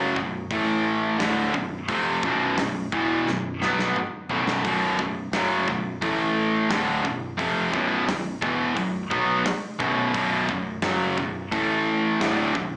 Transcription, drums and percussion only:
0.16 kick
0.51 kick, open hi-hat
1.20 snare, open hi-hat
1.54 kick
1.89 kick, open hi-hat
2.23 kick
2.58 snare, open hi-hat
2.92 kick
3.28 snare
3.62 snare
3.79 snare
3.96 mid tom
4.29 floor tom
4.47 snare
4.65 kick, open hi-hat
4.99 kick
5.33 snare, open hi-hat
5.68 kick
6.02 kick, open hi-hat
6.71 snare, open hi-hat
7.05 kick
7.39 kick, open hi-hat
7.74 kick
8.09 snare, open hi-hat
8.42 kick
8.77 kick, open hi-hat
9.11 kick
9.46 snare, open hi-hat
9.80 kick
10.14 kick, open hi-hat
10.49 kick
10.82 snare, open hi-hat
11.18 kick
11.52 kick, open hi-hat
12.21 snare, open hi-hat
12.55 kick

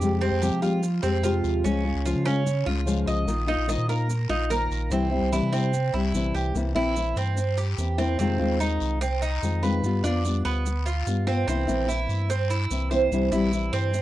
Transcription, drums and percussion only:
0.02 long guiro, maracas
0.42 short guiro, maracas
0.63 short guiro, maracas
0.83 long guiro, maracas
1.03 maracas
1.24 short guiro, maracas
1.44 short guiro, maracas
1.65 long guiro, maracas
2.06 short guiro, maracas
2.26 short guiro, maracas
2.46 long guiro, maracas
2.87 short guiro, maracas
3.08 short guiro, maracas
3.28 long guiro, maracas
3.69 short guiro, maracas
3.90 short guiro, maracas
4.10 long guiro, maracas
4.51 short guiro, maracas
4.71 short guiro, maracas
4.91 long guiro, maracas
5.33 short guiro, maracas
5.53 short guiro, maracas
5.73 long guiro, maracas
6.14 short guiro, maracas
6.35 short guiro, maracas
6.55 long guiro, maracas
6.96 short guiro, maracas
7.17 short guiro, maracas
7.37 long guiro, maracas
7.57 maracas
7.78 short guiro, maracas
7.99 short guiro, maracas
8.19 long guiro, maracas
8.60 short guiro, maracas
8.80 short guiro, maracas
9.01 long guiro, maracas
9.22 maracas
9.43 short guiro, maracas
9.63 short guiro, maracas
9.84 long guiro, maracas
10.04 maracas
10.25 short guiro, maracas
10.46 short guiro, maracas
10.66 long guiro, maracas
10.87 maracas
11.07 short guiro, maracas
11.28 short guiro, maracas
11.48 long guiro, maracas
11.69 maracas
11.89 short guiro, maracas
12.09 short guiro, maracas
12.30 long guiro, maracas
12.50 maracas
12.71 short guiro, maracas
12.91 short guiro, maracas
13.12 long guiro, maracas
13.32 maracas
13.53 short guiro, maracas
13.73 short guiro, maracas
13.94 long guiro, maracas

